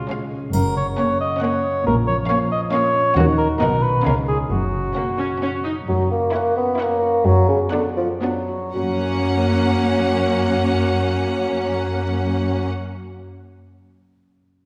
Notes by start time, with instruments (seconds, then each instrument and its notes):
Already playing: harp C#3 G#3 G#4
0.08 viola section G#3, violin section C#4 F5, harp C#4
0.31 harp G#4
0.53 double bass section F#1, cello section F#2, harp F#2, cor anglais A#4, triangle
0.76 harp C#3, cor anglais C#5
0.97 harp A#3, viola section A#3, violin section C#4 F#5, cor anglais C#5
1.20 harp C#4, cor anglais D#5
1.41 viola section A#3, violin section C#4 F#5, harp F#4, cor anglais C#5
1.86 double bass section A#1, harp A#2, cello section A#2, cor anglais A#4
2.07 harp F3, cor anglais C#5
2.28 viola section A#3, harp A#3, violin section C#4 F5, cor anglais C#5
2.51 harp C#4, cor anglais D#5
2.72 viola section A#3, violin section C#4 F5, harp F4, cor anglais C#5
2.95 harp C#4
3.16 double bass section D#2, cello section D#3, harp D#3, viola section A#3, violin section C#4 F#5, cor anglais F#4
3.38 harp C#4 F#4, cor anglais A#4
3.59 double bass section B1, harp B2, cello section B2, viola section B3, violin section D#4 F#5, cor anglais A#4
3.82 harp D#4 F#4, cor anglais B4
4.04 double bass section C#2, cello section C#3, harp C#3, viola section B3, violin section C#4 F5, cor anglais A#4
4.27 harp C#4 F4, cor anglais G#4
4.50 double bass section F#1, harp F#2, cello section F#2, cor anglais F#4
4.73 harp C#3
4.95 viola section A#3, harp A#3, violin section C#4 F#5
5.18 viola section C#4, harp C#4
5.41 violin section C#4 F#5, viola section C#4, harp F#4
5.65 harp C#4, viola section D#4
5.88 harp F#2, cello section F#2, bassoon F#3
6.10 bassoon A#3, harp C#4
6.32 bassoon A#3, viola section C#4, violin section E4 F#5, harp F#4
6.56 bassoon B3, harp E5
6.78 bassoon A#3, viola section C#4, violin section E4 F#5, harp C#5
7.02 harp F#4
7.24 cello section F#2, harp F#2, bassoon F#3
7.48 bassoon C#3, harp B3
7.72 bassoon D3, viola section B3, violin section D4 F#5, harp F#4
7.97 bassoon F3, harp D5
8.22 bassoon F#3, viola section B3, violin section D4 F#5, harp B4
8.48 harp F#4
8.74 cello section F#2, harp F#2, bassoon F#3, viola section A#3, violin section C#4 F#5
8.82 harp F#3
8.89 harp A#3
8.96 harp C#4
9.03 harp F#4
9.10 harp C#5